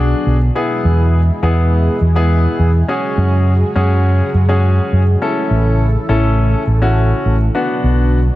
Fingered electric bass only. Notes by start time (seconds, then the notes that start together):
Already playing: B1
0.27 B1
0.85 E2
1.43 E2
2.01 E2
2.60 E2
3.18 F#2
3.76 F#2
4.34 F#2
4.93 F#2
5.51 A1
6.09 A1
6.67 A1
7.26 A1
7.84 B1